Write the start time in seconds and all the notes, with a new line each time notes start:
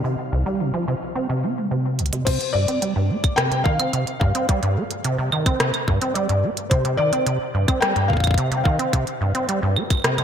Already playing: G3 D#4 C5 D5 F5
0.04 C3
0.32 C2
0.46 G3
0.60 C3
0.74 F3
0.88 C3
1.15 C4
1.29 C3
1.43 C4
1.57 G3
1.71 C3
1.99 C2, closed hi-hat
2.06 closed hi-hat
2.13 C3, closed hi-hat
2.25 C3 C5, kick, closed hi-hat, crash
2.41 closed hi-hat
2.53 G2 D5
2.68 C4, closed hi-hat
2.82 G3, closed hi-hat
2.96 G2
3.10 C4
3.24 kick, closed hi-hat, claves
3.36 C3 G5, cross-stick, closed hi-hat
3.52 C3, closed hi-hat
3.64 D#3 F5, kick
3.79 C4, closed hi-hat, claves
3.93 C3, closed hi-hat
4.07 closed hi-hat
4.20 G2 F5, kick
4.35 C4, closed hi-hat
4.49 G3, kick, closed hi-hat
4.63 G2, closed hi-hat
4.77 C4
4.91 closed hi-hat
5.04 C3, closed hi-hat
5.18 C3
5.32 D#3, claves
5.46 C4, kick, closed hi-hat, claves
5.60 C3, cross-stick, closed hi-hat
5.74 closed hi-hat, claves
5.88 G2, kick
6.02 C4, closed hi-hat
6.14 G3 D5, closed hi-hat
6.29 G2, closed hi-hat
6.43 C4
6.57 closed hi-hat
6.70 C3 C5, kick, closed hi-hat
6.85 C3, closed hi-hat
6.97 D#3 D5
7.13 C4, closed hi-hat
7.26 C3, closed hi-hat
7.54 G2
7.68 C4, kick, closed hi-hat, claves
7.81 G3 G5, cross-stick, closed hi-hat
7.96 G2, closed hi-hat
8.08 C4 F5, kick
8.13 kick
8.17 kick
8.20 kick
8.24 kick, closed hi-hat, claves
8.27 kick
8.31 kick
8.34 C3, kick, closed hi-hat
8.51 C3, closed hi-hat
8.57 G5
8.64 D#3 F5, kick
8.79 C4, closed hi-hat
8.93 C3, kick, closed hi-hat
9.07 closed hi-hat
9.21 G2
9.35 C4, closed hi-hat
9.49 G3, closed hi-hat
9.63 G2
9.76 C4, claves
9.90 kick, closed hi-hat, claves
9.93 claves
9.95 claves
9.97 claves
10.00 claves
10.02 C3, cross-stick, closed hi-hat, claves
10.18 C3, closed hi-hat, claves